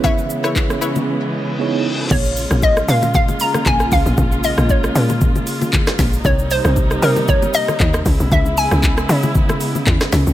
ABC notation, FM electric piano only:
X:1
M:4/4
L:1/8
Q:"Swing 16ths" 1/4=116
K:Bbdor
V:1 name="FM electric piano"
[_CD_FAd]6 [CEFAd]2 | z8 | z8 | z8 |
z8 |]